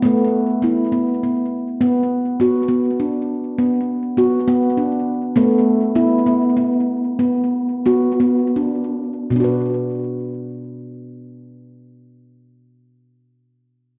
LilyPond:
<<
  \new Staff \with { instrumentName = "Handpan" } { \time 6/8 \key b \minor \tempo 4. = 66 a4 e'4 b4 | r4 fis'4 d'4 | b4 fis'4 d'4 | a4 e'4 b4 |
r4 fis'4 d'4 | r2. | r2. | }
  \new Staff \with { instrumentName = "Handpan" } { \time 6/8 \key b \minor b4 b8 b4. | b4 b8 b4. | r4 b8 b4. | b4 b8 b4. |
b4 b8 b4. | <b, b d' fis' b'>2.~ | <b, b d' fis' b'>2. | }
>>